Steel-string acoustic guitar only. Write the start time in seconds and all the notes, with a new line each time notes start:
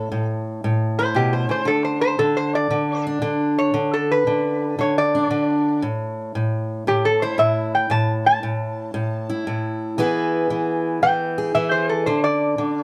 Already playing: A2
0.12 A2
0.64 A2
0.99 E4
1.14 B2
1.49 C#3
1.65 D3
2.19 D3
2.71 D3
3.07 D4
3.22 D3
3.74 D3
4.27 D3
4.79 D3
5.15 D4
5.31 D3
5.82 A2
6.35 A2
6.87 A2
7.23 E4
7.38 A2
7.90 A2
8.43 A2
8.94 A2
9.29 E4
9.47 A2
9.98 E3 B3 E4 G#4
10.50 E3
11.03 E3
11.38 G#4
11.55 E3
12.07 D3
12.58 D3